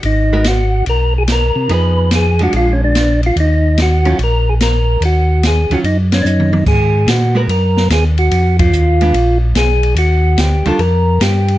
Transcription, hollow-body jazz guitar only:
X:1
M:4/4
L:1/8
Q:"Swing" 1/4=145
K:Abdor
V:1 name="Hollow-body jazz guitar"
z [A,CGB] z6 | [F,CEA]3 [F,A,=D]3 z2 | z3 [E,G,DF] z4 | z3 [E,G,DF] z4 |
z3 [A,CGB] z4 | z3 [A,C=D] z4 | z3 [E,=G,=DF] z4 |]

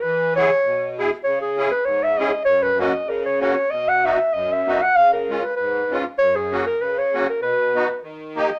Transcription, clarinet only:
X:1
M:2/4
L:1/16
Q:"Swing" 1/4=98
K:B
V:1 name="Clarinet"
B2 c4 z2 | c G2 B c e d2 | c B d2 A c c2 | d f e2 d e2 f |
^e A2 B B3 z | c G2 A B c2 A | B4 z2 d2 |]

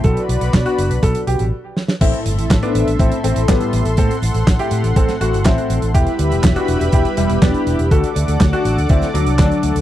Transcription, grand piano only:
X:1
M:4/4
L:1/16
Q:1/4=122
K:Ador
V:1 name="Grand piano"
A z4 F2 z A z G z4 z | [CE] z4 [B,D]2 z [CE] z [A,C] z [G,B,]3 z | [CA] z4 [EG]2 z [CA] z [A,F] z [CE]3 z | [EG] z4 [DF]2 z [EG] z [G,E] z [B,D]3 z |
[FA] z4 [DF]2 z [CE] z [F,D] z [F,D]3 z |]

